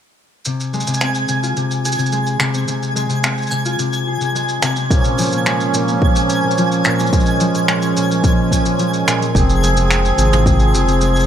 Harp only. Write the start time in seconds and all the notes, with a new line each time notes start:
0.46 C3
0.73 G#3
0.88 C3
1.01 C4
1.29 C3
1.43 F4
1.56 C3
1.85 G#4
1.99 C3
2.12 G#3
2.40 C3
2.54 C4
2.68 C3
2.95 G#3
3.10 C3
3.23 C4
3.51 C3
3.65 F4
3.79 C3
4.07 G#4
4.21 C3
4.35 G#3
4.63 C3
4.76 C4
4.90 A#2
5.18 F3
5.32 A#2
5.46 G#3
5.74 A#2
5.88 A#3
6.02 A#2
6.30 C#4
6.44 A#2
6.58 F3
6.85 A#2
6.99 G#3
7.13 A#2
7.40 F3
7.54 A#2
7.68 G#3
7.97 A#2
8.10 A#3
8.24 A#2
8.52 C#4
8.65 A#2
8.79 F3
9.07 A#2
9.21 G#3
9.35 C3
9.62 G#3
9.77 C3
9.90 C4
10.18 C3
10.32 F4
10.46 C3
10.74 G#4
10.88 C3
11.02 G#3